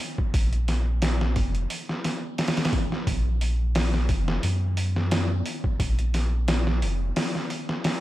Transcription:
0.00 open hi-hat medium
0.18 kick medium
0.34 1.38 A#1 loud
0.34 kick loud
0.34 open hi-hat medium
0.53 closed hi-hat soft
0.68 snare soft
0.68 open hi-hat medium
1.02 snare loud
1.02 open hi-hat medium
1.21 snare soft
1.36 1.67 F1 loud
1.36 kick medium
1.36 open hi-hat medium
1.55 closed hi-hat soft
1.70 open hi-hat medium
1.89 snare soft
2.04 snare medium
2.04 open hi-hat medium
2.38 snare medium
2.38 open hi-hat medium
2.48 snare medium
2.48 open hi-hat medium
2.57 snare medium
2.57 open hi-hat medium
2.65 snare medium
2.65 open hi-hat medium
2.73 kick medium
2.73 open hi-hat medium
2.92 snare soft
3.07 4.11 A#1 loud
3.07 kick loud
3.07 open hi-hat medium
3.41 open hi-hat medium
3.75 snare loud
3.75 open hi-hat medium
3.94 snare soft
4.09 4.40 F1 loud
4.09 kick medium
4.09 open hi-hat medium
4.28 snare medium
4.43 5.43 F#2 loud
4.43 open hi-hat medium
4.77 open hi-hat medium
4.96 snare soft
5.11 snare loud
5.11 open hi-hat medium
5.46 open hi-hat medium
5.64 kick medium
5.80 6.84 A#1 loud
5.80 kick loud
5.80 open hi-hat medium
5.99 closed hi-hat soft
6.14 snare soft
6.14 open hi-hat medium
6.48 snare loud
6.48 open hi-hat medium
6.67 snare soft
6.82 7.12 F1 loud
6.82 open hi-hat medium
7.16 snare loud
7.16 open hi-hat medium
7.35 snare soft
7.50 open hi-hat medium
7.69 snare soft
7.84 snare loud
7.84 open hi-hat medium

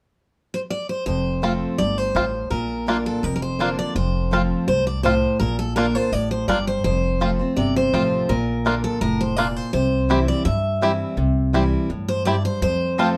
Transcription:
0.54 0.59 C5 medium
0.70 0.89 D5 medium
0.89 1.05 C5 medium
1.06 1.63 F1 medium
1.06 1.76 F2 medium
1.06 1.75 C5 medium
1.42 1.77 F3 medium
1.42 1.77 A3 medium
1.42 1.78 C4 medium
1.42 1.52 C4 medium
1.42 1.78 F4 medium
1.42 1.52 F4 medium
1.78 2.10 G1 medium
1.78 2.14 G2 medium
1.78 1.98 D5 medium
1.98 2.50 C5 medium
2.15 2.46 A1 medium
2.15 2.49 A2 medium
2.15 2.24 C4 medium
2.15 2.24 F4 medium
2.50 3.07 A#1 medium
2.50 3.20 A#2 medium
2.50 3.06 A#4 medium
2.86 3.21 D3 medium
2.86 3.22 A#3 medium
2.86 2.96 A#3 medium
2.86 3.22 D4 medium
2.86 2.97 D4 medium
2.86 3.22 F4 medium
2.86 2.97 F4 medium
3.06 3.24 A4 medium
3.23 3.80 F1 medium
3.23 3.92 F2 loud
3.23 3.34 A#4 medium
3.36 3.42 A#4 medium
3.42 3.78 C5 medium
3.59 3.94 D3 medium
3.59 3.94 A#3 medium
3.59 3.69 A#3 medium
3.59 3.94 D4 medium
3.59 3.69 D4 medium
3.59 3.95 F4 medium
3.59 3.69 F4 medium
3.79 3.95 D5 loud
3.95 4.52 F1 medium
3.95 4.65 F2 medium
3.95 4.67 C5 medium
4.31 4.66 F3 medium
4.31 4.66 A3 medium
4.31 4.66 C4 medium
4.31 4.41 C4 medium
4.31 4.67 F4 medium
4.31 4.41 F4 medium
4.68 5.24 C2 medium
4.68 5.03 G2 medium
4.68 4.86 C5 medium
4.87 5.03 D5 medium
5.03 5.39 A2 medium
5.03 5.13 C4 medium
5.03 5.13 F4 medium
5.03 5.37 C5 medium
5.40 5.97 A#1 medium
5.40 6.09 A#2 medium
5.40 5.58 A#4 medium
5.59 5.75 A4 medium
5.76 5.95 D3 medium
5.76 5.85 A#3 medium
5.76 5.95 A#3 medium
5.76 5.96 D4 medium
5.76 5.85 D4 medium
5.76 5.86 F4 medium
5.76 5.94 F4 medium
5.76 5.95 A#4 medium
5.95 6.12 D4 medium
5.95 6.12 F4 medium
5.95 6.13 C5 medium
6.12 6.43 A1 medium
6.12 6.47 A2 medium
6.12 6.31 D5 medium
6.31 6.47 C5 medium
6.48 6.79 G1 medium
6.48 6.83 G2 medium
6.48 6.57 A#3 medium
6.48 6.57 D4 medium
6.48 6.58 F4 medium
6.48 6.66 D5 medium
6.67 6.83 C5 medium
6.84 7.41 F1 medium
6.84 7.54 F2 medium
6.84 7.53 C5 medium
7.20 7.39 F3 medium
7.20 7.39 A3 medium
7.20 7.39 C4 medium
7.20 7.30 C4 medium
7.20 7.38 F4 medium
7.20 7.30 F4 medium
7.39 7.57 C4 soft
7.39 7.56 F4 medium
7.56 7.88 G1 medium
7.56 8.26 C3 medium
7.56 7.75 D5 medium
7.76 8.31 C5 loud
7.93 8.24 A1 medium
7.93 8.27 F3 medium
7.93 8.28 A3 medium
7.93 8.02 C4 medium
7.93 8.28 C4 medium
7.93 8.02 F4 medium
7.93 8.28 F4 medium
8.29 8.86 A#1 medium
8.29 8.98 A#2 medium
8.29 8.81 A#4 medium
8.65 8.99 D3 medium
8.65 9.00 A#3 medium
8.65 8.74 A#3 medium
8.65 9.00 D4 medium
8.65 8.74 D4 medium
8.65 9.00 F4 medium
8.65 8.74 F4 medium
8.84 9.01 A4 medium
9.01 9.57 F1 medium
9.01 9.36 A2 medium
9.01 9.21 A#4 medium
9.21 9.36 C5 medium
9.36 9.72 A#2 medium
9.36 9.46 A#3 medium
9.36 9.47 D4 medium
9.36 9.47 F4 medium
9.36 9.56 D5 medium
9.56 9.72 C5 medium
9.73 10.30 C2 medium
9.73 10.42 C3 medium
9.73 10.28 C5 medium
10.09 10.44 E3 medium
10.09 10.44 G3 medium
10.09 10.18 C4 medium
10.09 10.44 C4 medium
10.09 10.45 E4 medium
10.09 10.19 E4 medium
10.09 10.19 G4 medium
10.28 10.45 D5 medium
10.45 11.02 G2 medium
10.45 11.15 G2 medium
10.45 12.05 E5 loud
10.81 11.16 E3 medium
10.81 11.16 G3 medium
10.81 11.16 C4 medium
10.81 10.91 C4 medium
10.81 11.17 E4 medium
10.81 10.91 E4 medium
10.81 10.91 G4 medium
11.17 11.74 C2 medium
11.17 11.87 C3 medium
11.53 11.88 E3 medium
11.53 11.88 G3 medium
11.53 11.63 C4 medium
11.53 11.89 C4 medium
11.53 11.89 E4 medium
11.53 11.63 E4 medium
11.53 11.63 G4 medium
11.89 12.46 G2 medium
11.89 12.25 A2 medium
12.08 12.25 C5 medium
12.25 12.61 G2 medium
12.25 12.35 C4 medium
12.25 12.35 E4 medium
12.25 12.35 G4 medium
12.25 12.44 D5 medium
12.45 12.61 C5 medium
12.62 13.17 F2 medium
12.62 13.17 C5 loud
12.98 13.17 F3 medium
12.98 13.17 A3 medium
12.98 13.08 C4 medium
12.98 13.17 C4 medium
12.98 13.07 C4 medium
12.98 13.08 F4 medium
12.98 13.16 F4 medium
12.98 13.08 F4 medium
12.98 13.08 C5 medium
12.98 13.08 A5 medium

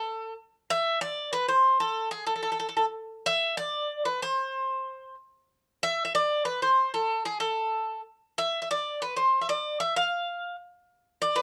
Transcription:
0.00 0.33 A4 medium
0.71 1.01 E5 loud
1.01 1.32 D5 medium
1.33 1.48 B4 medium
1.48 1.80 C5 medium
1.80 2.11 A4 medium
2.11 2.26 G#4 medium
2.27 2.34 A4 medium
2.36 2.41 A4 medium
2.43 2.51 A4 medium
2.52 2.58 A4 soft
2.59 2.67 A4 medium
2.69 2.75 A4 soft
2.77 2.84 A4 medium
3.26 3.56 E5 loud
3.57 4.02 D5 medium
4.05 4.22 B4 medium
4.22 5.14 C5 medium
5.83 6.04 E5 loud
6.05 6.13 E5 medium
6.15 6.44 D5 medium
6.45 6.60 B4 medium
6.62 6.92 C5 medium
6.94 7.23 A4 medium
7.26 7.40 G#4 medium
7.40 8.00 A4 medium
8.38 8.60 E5 medium
8.62 8.69 E5 medium
8.71 8.99 D5 medium
9.02 9.16 B4 medium
9.16 9.39 C5 medium
9.41 9.48 E5 medium
9.49 9.78 D5 medium
9.80 9.94 E5 medium
9.97 10.55 F5 medium
11.22 11.38 D5 medium
11.36 11.42 B4 medium

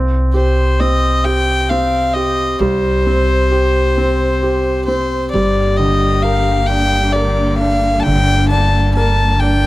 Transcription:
0.00 2.57 C2 medium
0.00 0.79 C4 medium
0.34 1.24 G4 soft
0.34 0.82 C5 medium
0.80 1.69 C4 soft
0.80 1.26 D#5 medium
1.24 2.14 G4 soft
1.24 1.71 G5 medium
1.69 3.05 C4 soft
1.69 2.15 F5 medium
2.14 3.50 G4 soft
2.14 2.60 D#5 medium
2.59 5.29 C2 medium
2.59 5.30 G3 medium
2.59 4.85 C5 medium
3.07 3.96 C4 soft
3.51 4.41 G4 soft
3.98 4.86 C4 soft
4.43 5.31 G4 soft
4.85 5.32 C4 soft
4.85 5.29 C5 medium
5.31 8.02 G1 medium
5.31 9.67 D3 medium
5.31 9.67 G3 medium
5.31 8.03 G3 medium
5.31 9.67 A#3 medium
5.31 8.04 G4 medium
5.31 5.78 D5 medium
5.77 7.57 D3 soft
5.77 6.24 D#5 medium
6.22 7.14 A#4 soft
6.22 6.68 F5 medium
6.67 7.59 D4 soft
6.67 7.14 G5 medium
7.13 8.93 A#4 soft
7.13 7.58 D5 medium
7.58 8.49 D4 soft
7.58 8.01 F5 medium
8.00 8.48 G5 medium
8.00 8.05 A5 medium
8.06 9.67 G1 medium
8.06 9.67 D3 medium
8.49 9.40 D4 medium
8.49 8.92 A5 medium
8.95 9.67 A#4 soft
8.95 9.41 A5 medium
9.39 9.67 D4 soft
9.39 9.67 G5 medium

